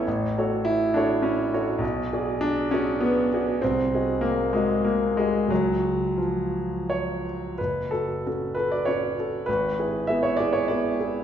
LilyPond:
\new Staff \with { instrumentName = "Grand piano" } { \time 3/4 \key fis \minor \tempo 4 = 99 << { a,,8 <fis' a' cis''>4 <fis' a' cis''>4 <fis' a' cis''>8 | b,,8 <fis' gis' d''>4 <fis' gis' d''>4 <fis' gis' d''>8 | bis,,8 <fis' gis' dis''>4 <fis' gis' dis''>4 <fis' gis' dis''>8 | <cis, gis' cis''>2. |
fis,,8 fis'8 <cis' fis' a'>8 <fis' a'>8 <cis' fis' a'>8 <fis' a'>8 | gis,,8 <e' gis'>8 <b e' gis'>8 <e' gis'>8 <b e' gis'>8 <e' gis'>8 | } \\ { r4 e'8 d'8 cis'4 | r4 d'8 cis'8 b4 | bis4 ais8 gis8 ais8 gis8 | fis4 eis4 cis''4 |
b'8 a'4 b'16 d''16 cis''4 | b'4 e''16 cis''16 d''16 cis''16 d''4 | } >> }